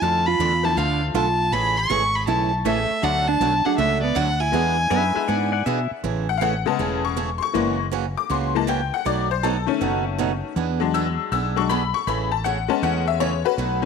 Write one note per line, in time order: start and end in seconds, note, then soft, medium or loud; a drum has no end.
0.02 0.38 F2 medium
0.02 0.24 D3 medium
0.02 0.25 A3 medium
0.02 0.25 D4 medium
0.02 0.26 F4 medium
0.02 0.25 F4 medium
0.02 0.25 A4 medium
0.02 0.28 A5 loud
0.27 0.65 F4 medium
0.27 0.66 B5 loud
0.39 0.76 E2 medium
0.39 0.52 D3 medium
0.39 0.52 A3 medium
0.39 0.52 D4 medium
0.39 0.52 F4 medium
0.39 0.52 A4 medium
0.63 1.12 F3 medium
0.63 1.12 A3 medium
0.63 1.12 D4 medium
0.63 0.78 E4 medium
0.63 1.12 F4 medium
0.63 1.13 A4 medium
0.63 0.79 A5 medium
0.77 1.14 D2 medium
0.77 1.00 D3 medium
0.77 1.00 A3 medium
0.77 1.02 D4 medium
0.77 1.00 D4 medium
0.77 1.00 F4 medium
0.77 1.00 A4 medium
0.77 1.02 F5 medium
1.14 1.51 B1 medium
1.14 1.27 D3 medium
1.14 1.27 A3 medium
1.14 1.27 D4 medium
1.14 1.53 F4 medium
1.14 1.27 F4 medium
1.14 1.27 A4 medium
1.14 1.54 A5 loud
1.52 1.89 A1 medium
1.52 1.75 C#3 medium
1.52 1.75 E3 medium
1.52 1.75 A3 medium
1.52 1.75 C#4 medium
1.52 1.75 G#4 medium
1.52 1.78 G#4 medium
1.52 1.79 B5 loud
1.77 2.16 A4 medium
1.77 2.17 C#6 loud
1.89 2.26 G#1 medium
1.89 2.02 C#3 medium
1.89 2.02 E3 medium
1.89 2.02 A3 medium
1.89 2.02 C#4 medium
1.89 2.02 G#4 medium
2.15 2.28 G#4 medium
2.15 2.27 B5 medium
2.27 2.64 B1 medium
2.27 2.50 C#3 medium
2.27 2.50 E3 medium
2.27 2.50 A3 medium
2.27 2.50 C#4 medium
2.27 2.51 E4 medium
2.27 2.50 G#4 medium
2.27 2.51 A5 medium
2.65 2.88 A1 medium
2.65 2.77 C#3 medium
2.65 2.77 E3 medium
2.65 2.87 A3 medium
2.65 3.04 A3 medium
2.65 2.77 A3 medium
2.65 2.87 C#4 medium
2.65 2.78 C#4 medium
2.65 2.88 E4 medium
2.65 2.88 G#4 medium
2.65 2.78 G#4 medium
2.65 2.88 A4 medium
2.65 3.05 E5 medium
3.02 3.39 D2 medium
3.02 3.25 D3 medium
3.02 3.25 F#3 medium
3.02 3.26 F#3 medium
3.02 3.25 A3 medium
3.02 3.26 A3 medium
3.02 3.25 D4 medium
3.02 3.27 D4 medium
3.02 3.26 D4 medium
3.02 3.25 F#4 medium
3.02 3.26 F#4 medium
3.02 3.25 A4 medium
3.02 3.29 F#5 loud
3.28 3.65 D4 medium
3.28 3.67 A5 loud
3.40 3.63 B1 medium
3.40 3.52 D3 medium
3.40 3.53 F#3 medium
3.40 3.53 A3 medium
3.40 3.53 D4 medium
3.40 3.53 F#4 medium
3.65 3.77 F#3 medium
3.65 3.77 A3 medium
3.65 3.77 D4 medium
3.65 3.78 D4 medium
3.65 3.77 F#4 medium
3.65 3.77 G#4 medium
3.65 3.77 F#5 medium
3.65 muted fretless electric bass stroke soft
3.78 4.15 C#2 medium
3.78 4.01 D3 medium
3.78 4.01 F#3 medium
3.78 4.01 A3 medium
3.78 4.01 D4 medium
3.78 4.01 F#4 medium
3.78 4.01 E5 medium
4.02 4.16 B3 medium
4.02 4.17 D5 medium
4.15 4.52 D2 medium
4.15 4.27 D3 medium
4.15 4.28 F#3 medium
4.15 4.28 A3 medium
4.15 4.40 D4 medium
4.15 4.28 D4 medium
4.15 4.28 F#4 medium
4.15 4.42 F#5 loud
4.40 5.66 E4 medium
4.40 5.66 G#5 loud
4.52 4.90 E2 medium
4.52 4.76 E3 medium
4.52 4.75 G#3 medium
4.52 4.75 B3 medium
4.52 4.76 B3 medium
4.52 4.75 D4 medium
4.52 4.76 D4 medium
4.52 4.76 E4 medium
4.52 4.76 G#4 medium
4.90 5.14 F#2 medium
4.90 5.03 E3 medium
4.90 5.03 B3 medium
4.90 5.03 D4 medium
4.90 5.03 G#4 medium
4.90 5.14 B4 medium
4.90 5.15 E5 medium
5.14 5.27 G#3 medium
5.14 5.27 B3 medium
5.14 5.27 D4 medium
5.14 5.27 E4 medium
5.14 5.27 G#4 medium
5.14 5.28 B4 medium
5.14 5.29 E5 medium
5.14 muted fretless electric bass stroke soft
5.28 5.65 G#2 medium
5.28 5.51 E3 medium
5.28 5.51 B3 medium
5.28 5.51 D4 medium
5.28 5.52 G#4 medium
5.28 5.51 D5 medium
5.28 5.51 F#5 medium
5.52 5.65 D5 medium
5.52 5.65 F#5 medium
5.66 5.89 B2 medium
5.66 5.78 E3 medium
5.66 5.78 B3 medium
5.66 5.78 D4 medium
5.66 5.79 G#4 medium
5.66 5.90 E5 medium
5.91 muted fretless electric bass stroke soft
6.04 6.64 A1 medium
6.04 6.26 C#3 medium
6.04 6.26 E3 medium
6.04 6.26 A3 medium
6.04 6.27 C#4 medium
6.04 6.27 G#4 medium
6.29 6.41 F#5 medium
6.38 6.53 C#3 medium
6.38 6.53 E3 medium
6.38 6.53 A3 medium
6.38 6.41 F5 medium
6.42 6.54 C#4 medium
6.42 6.54 G#4 medium
6.42 6.66 F#5 medium
6.66 7.14 C#3 medium
6.66 7.14 G#3 medium
6.66 7.15 B3 medium
6.66 7.03 A5 medium
6.79 7.39 E1 medium
6.79 7.02 C#3 medium
6.79 7.02 E3 medium
6.79 7.02 A3 medium
6.79 7.02 C#4 medium
6.79 7.02 G#4 medium
7.05 7.41 C#6 medium
7.16 7.29 C#3 medium
7.16 7.29 E3 medium
7.16 7.29 A3 medium
7.16 7.29 C#4 medium
7.16 7.29 G#4 medium
7.38 7.40 C6 medium
7.42 7.79 C#6 loud
7.53 8.15 F#1 medium
7.53 7.77 C#3 medium
7.53 7.82 E3 medium
7.53 7.77 E3 medium
7.53 7.83 G#3 soft
7.53 7.83 A#3 medium
7.53 7.77 A#3 medium
7.53 7.77 C#4 medium
7.53 7.78 F#4 medium
7.92 8.04 C#3 medium
7.92 8.04 E3 medium
7.92 8.04 A#3 medium
7.92 8.04 C#4 medium
7.92 8.04 F#4 medium
8.17 8.30 D6 medium
8.30 8.90 C#2 medium
8.30 8.52 C#3 medium
8.30 8.52 E3 medium
8.30 8.53 A#3 medium
8.30 8.53 C#4 medium
8.30 8.53 F#4 medium
8.30 8.55 C6 medium
8.55 8.66 E3 soft
8.55 8.67 G#3 soft
8.55 8.67 A#3 medium
8.55 8.68 A5 medium
8.67 8.79 C#3 medium
8.67 8.80 E3 medium
8.67 8.80 A#3 medium
8.67 8.80 C#4 medium
8.67 8.80 F#4 medium
8.67 8.92 G5 medium
8.94 9.06 F#5 medium
9.05 9.66 B1 medium
9.05 9.28 B2 medium
9.05 9.28 F#3 medium
9.05 9.28 A3 medium
9.05 9.28 D#4 medium
9.05 9.28 F#4 medium
9.05 9.30 D5 medium
9.31 9.43 C5 medium
9.43 9.55 B2 medium
9.43 9.55 F#3 medium
9.43 9.55 A3 medium
9.43 9.56 D#4 medium
9.43 9.56 F#4 medium
9.43 10.16 A4 medium
9.66 10.51 D#3 medium
9.66 10.52 A3 medium
9.66 10.52 C#4 medium
9.81 10.41 F#1 medium
9.81 10.03 B2 medium
9.81 10.03 F#3 medium
9.81 10.04 A3 medium
9.81 10.04 D#4 medium
9.81 10.04 F#4 medium
10.19 10.30 B2 medium
10.19 10.31 F#3 medium
10.19 10.31 A3 medium
10.19 10.31 D#4 medium
10.19 10.31 F#4 medium
10.56 11.16 E2 medium
10.56 10.79 E3 medium
10.56 10.79 B3 medium
10.56 10.79 D4 medium
10.56 10.79 G#4 medium
10.80 11.28 F#3 medium
10.80 11.29 G#3 soft
10.80 11.29 D4 medium
10.94 11.06 E3 medium
10.94 11.06 B3 medium
10.94 11.06 D4 medium
10.94 11.06 G#4 medium
10.94 11.18 E6 loud
11.32 11.92 B1 medium
11.32 11.54 E3 medium
11.32 11.55 B3 medium
11.32 11.55 D4 medium
11.32 11.55 G#4 medium
11.32 11.56 E6 medium
11.56 11.68 F#3 soft
11.56 11.68 G#3 soft
11.56 11.68 D4 medium
11.56 11.69 C#6 medium
11.69 11.81 E3 medium
11.69 11.82 B3 medium
11.69 11.82 D4 medium
11.69 11.82 G#4 medium
11.69 11.93 B5 medium
11.94 12.07 C#6 medium
12.07 12.67 A1 medium
12.07 12.30 C#3 medium
12.07 12.30 E3 medium
12.07 12.30 A3 medium
12.07 12.30 C#4 medium
12.07 12.30 G#4 medium
12.07 12.31 B5 medium
12.32 12.44 A5 medium
12.44 12.57 C#3 medium
12.44 12.57 E3 medium
12.44 12.57 A3 medium
12.44 12.57 C#4 medium
12.44 12.57 G#4 medium
12.44 12.69 F#5 medium
12.68 13.53 G#3 medium
12.68 13.53 B3 medium
12.68 13.54 C#4 medium
12.68 12.82 A5 medium
12.82 13.43 E2 medium
12.82 13.05 C#3 medium
12.82 13.05 E3 medium
12.82 13.05 A3 medium
12.82 13.06 C#4 medium
12.82 13.06 G#4 medium
12.82 13.07 F#5 medium
13.08 13.20 E5 medium
13.20 13.32 C#3 medium
13.20 13.32 E3 medium
13.20 13.32 A3 medium
13.20 13.32 C#4 medium
13.20 13.33 G#4 medium
13.20 13.44 C#5 medium
13.45 13.85 F#4 medium
13.45 13.85 B4 loud
13.58 13.85 B1 medium
13.58 13.81 B2 medium
13.58 13.81 F#3 medium
13.58 13.81 A3 medium
13.58 13.81 D#4 medium
13.58 13.81 F#4 medium
13.82 13.85 D#3 medium